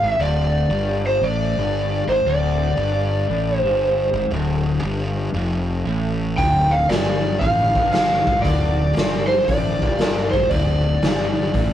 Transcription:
Already playing: electric slide guitar F5
0.02 fingered electric bass G#1, overdriven electric guitar G#2
0.09 electric slide guitar E5
0.19 fingered electric bass D1, overdriven electric guitar D2, electric slide guitar D5
0.70 fingered electric bass G1, overdriven electric guitar G2
1.06 electric slide guitar C5
1.21 fingered electric bass A1, overdriven electric guitar A2, electric slide guitar D5
1.56 fingered electric bass G1, overdriven electric guitar G2
2.07 fingered electric bass G#1, overdriven electric guitar G#2, electric slide guitar C5
2.25 fingered electric bass D1, overdriven electric guitar D2, electric slide guitar D5
2.77 fingered electric bass G1, overdriven electric guitar G2
3.29 fingered electric bass A1, overdriven electric guitar A2
3.58 electric slide guitar C5
3.62 fingered electric bass G1, overdriven electric guitar G2
4.13 fingered electric bass G#1, overdriven electric guitar G#2
4.30 fingered electric bass D1, overdriven electric guitar D2
4.83 fingered electric bass G1, overdriven electric guitar G2
5.34 fingered electric bass F1, overdriven electric guitar F2
5.85 fingered electric bass A1, overdriven electric guitar A2
6.38 fingered electric bass D1, overdriven electric guitar D2, electric slide guitar G5, kick, open hi-hat
6.71 electric slide guitar F5
6.89 fingered electric bass G1, overdriven electric guitar G2, electric slide guitar D5, snare, open hi-hat
7.39 fingered electric bass A1, overdriven electric guitar A2, electric slide guitar F5, kick, open hi-hat
7.75 fingered electric bass G1, overdriven electric guitar G2, kick
7.93 electric slide guitar F5, snare, open hi-hat
8.27 fingered electric bass G#1, overdriven electric guitar G#2, kick
8.42 fingered electric bass D1, overdriven electric guitar D2, electric slide guitar D5, kick, open hi-hat
8.96 fingered electric bass G1, overdriven electric guitar G2, snare, open hi-hat
9.27 electric slide guitar C5
9.44 fingered electric bass A1, electric slide guitar D5, kick, open hi-hat
9.49 overdriven electric guitar A2
9.82 fingered electric bass G1, overdriven electric guitar G2, kick
9.98 snare, open hi-hat
10.31 fingered electric bass G#1, overdriven electric guitar G#2, electric slide guitar C5, kick
10.50 fingered electric bass D1, overdriven electric guitar D2, electric slide guitar D5, kick, open hi-hat
11.02 fingered electric bass G1, overdriven electric guitar G2, snare, open hi-hat
11.53 fingered electric bass A1, overdriven electric guitar A2, kick, open hi-hat

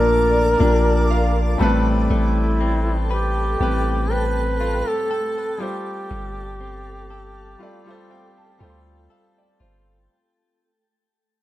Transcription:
Already playing: 808-style bass A#1, grand piano A#2 A#3 D4 A4 A#4, clean electric guitar A#2 A3 D4 F4, duduk A#4, ambient pad D5 A5 D6
0.58 808-style bass A#1, grand piano A#2 A#3 D4, clean electric guitar D4
0.63 grand piano G4
0.70 grand piano A#4
1.10 clean electric guitar F4, grand piano F5
1.58 808-style bass A1, grand piano A2 G3 C4 A5, clean electric guitar A3, ambient pad A4 G5 A5
1.62 grand piano B4
2.10 808-style bass A1, clean electric guitar A3, duduk E4
2.61 clean electric guitar C4
3.11 duduk G4, clean electric guitar B4
3.58 808-style bass A1, grand piano A2 G3 C4, clean electric guitar G4
3.63 grand piano B4
4.11 clean electric guitar C4, duduk B4
4.61 clean electric guitar F4
4.88 clean electric guitar G4, duduk A4
5.11 clean electric guitar A4
5.38 clean electric guitar B4
5.58 grand piano G3 F4 A4, clean electric guitar G3, ambient pad A4 F5
5.62 duduk G4, grand piano C5
6.11 808-style bass G1, clean electric guitar G3
6.60 clean electric guitar C4
7.10 clean electric guitar A4
7.59 grand piano G3 F4 A4 A5, clean electric guitar F4, ambient pad G5
7.63 grand piano D5
7.86 grand piano G3 F4 A4 F5
7.90 grand piano C5
8.10 clean electric guitar C4, synth pluck F5, grand piano G5
8.38 grand piano A5
8.42 synth pluck A5
8.59 808-style bass D2, grand piano G3 F4 A4 G5, clean electric guitar F4
8.63 grand piano C5
8.70 synth pluck C6
9.10 clean electric guitar A4, grand piano F5
9.38 grand piano D5
9.60 808-style bass G1, clean electric guitar F4, grand piano C5

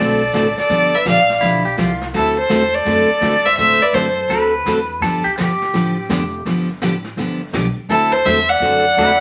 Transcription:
Already playing: fiddle A4 D5
0.00 upright bass B1, steel-string acoustic guitar D3 A3 C4 F#4 A4
0.33 upright bass A1, steel-string acoustic guitar D3 A3 C4 F#4 A4, snare, hi-hat pedal
0.57 fiddle A4 D5, muted upright bass stroke, snare
0.70 upright bass G1, steel-string acoustic guitar D3 F3 B3 D4 G4, brush sweep, snare
0.95 fiddle B4 E5
1.05 upright bass A#1, steel-string acoustic guitar D3 F3 B3 D4 G4, fiddle D5 F5, snare, hi-hat pedal
1.29 snare
1.41 upright bass B1, steel-string acoustic guitar D3 F3 B3 D4 G4, pedal steel guitar E4, brush sweep, snare
1.65 pedal steel guitar G4
1.77 upright bass C2, steel-string acoustic guitar D3 F3 B3 D4 G4, pedal steel guitar F4, snare, hi-hat pedal
2.01 snare
2.13 upright bass D2, steel-string acoustic guitar D3 A3 C4 F#4 A4, fiddle E4 A4, brush sweep, snare
2.38 fiddle A4 C5
2.50 upright bass E2, steel-string acoustic guitar D3 A3 C4 F#4 A4, snare, hi-hat pedal
2.74 fiddle A4 D5
2.85 upright bass F#2, steel-string acoustic guitar D3 A3 C4 F#4 A4, brush sweep, snare
3.21 upright bass G2, steel-string acoustic guitar D3 A3 C4 F#4 A4, snare, hi-hat pedal
3.45 fiddle C5 E5, snare
3.57 upright bass A2, steel-string acoustic guitar D3 A3 C4 F#4 A4, fiddle C5 E5, brush sweep, snare
3.82 fiddle B4 D5, muted upright bass stroke
3.93 upright bass F#2, steel-string acoustic guitar D3 A3 C4 F#4 A4, fiddle A4 C5, snare, hi-hat pedal
4.29 upright bass D2, steel-string acoustic guitar D3 A3 C4 F#4 A4, pedal steel guitar B4, brush sweep, snare
4.65 upright bass E2, steel-string acoustic guitar D3 A3 C4 F#4 A4, snare, hi-hat pedal
5.00 upright bass G2, steel-string acoustic guitar D3 F3 B3 D4 G4, pedal steel guitar A4, brush sweep, snare
5.24 pedal steel guitar G4, muted upright bass stroke, kick
5.38 upright bass G1, steel-string acoustic guitar D3 F3 B3 D4 G4, pedal steel guitar G4, snare, hi-hat pedal
5.62 snare
5.74 upright bass A1, steel-string acoustic guitar D3 F3 B3 D4 G4, brush sweep, snare
6.09 upright bass F1, steel-string acoustic guitar D3 F3 B3 D4 G4, snare, hi-hat pedal
6.45 upright bass G1, steel-string acoustic guitar D3 F3 B3 D4 G4, brush sweep, snare
6.82 upright bass A1, steel-string acoustic guitar D3 F3 B3 D4 G4, snare, hi-hat pedal
7.04 snare
7.17 upright bass G1, steel-string acoustic guitar D3 F3 B3 D4 G4, brush sweep, snare
7.53 upright bass B1, steel-string acoustic guitar D3 F3 B3 D4 G4, snare, hi-hat pedal
7.76 muted upright bass stroke
7.89 upright bass D2, steel-string acoustic guitar D3 A3 C4 F#4 A4, fiddle E4 A4, brush sweep, snare
8.12 fiddle A4 C5
8.25 upright bass E2, steel-string acoustic guitar D3 A3 C4 F#4 A4, fiddle C5 E5, snare, hi-hat pedal
8.49 fiddle D5 F#5
8.60 upright bass F#2, steel-string acoustic guitar D3 A3 C4 F#4 A4, brush sweep, snare
8.97 upright bass E2, steel-string acoustic guitar D3 A3 C4 F#4 A4, pedal steel guitar E4, snare, hi-hat pedal

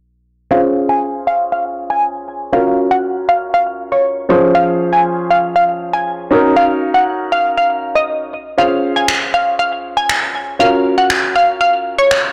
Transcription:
0.51 grand piano C#4 F4 G#4 C5, synth pluck F5
0.89 synth pluck G#5
1.27 synth pluck F5
1.52 synth pluck F5
1.90 synth pluck G#5
2.52 grand piano C#4 F4 F#4 A#4, synth pluck F5
2.91 synth pluck F#5
3.29 synth pluck F5
3.54 synth pluck F5
3.92 synth pluck C#5
4.29 grand piano F3 C#4 F4 G#4 C5
4.55 synth pluck F5
4.93 synth pluck G#5
5.31 synth pluck F5
5.56 synth pluck F5
5.93 synth pluck G#5
6.31 grand piano C#4 D#4 F#4 A#4
6.56 synth pluck F5
6.94 synth pluck F#5
7.32 synth pluck F5
7.57 synth pluck F5
7.95 synth pluck D#5
8.58 grand piano C#4 F4 G#4 C5, synth pluck F5
8.96 synth pluck G#5
9.08 finger snap
9.34 synth pluck F5
9.59 synth pluck F5
9.97 synth pluck G#5
10.09 finger snap
10.59 grand piano C#4 F4 F#4 A#4, synth pluck F5
10.98 synth pluck F#5
11.10 finger snap
11.36 synth pluck F5
11.61 synth pluck F5
11.98 synth pluck C#5
12.11 finger snap

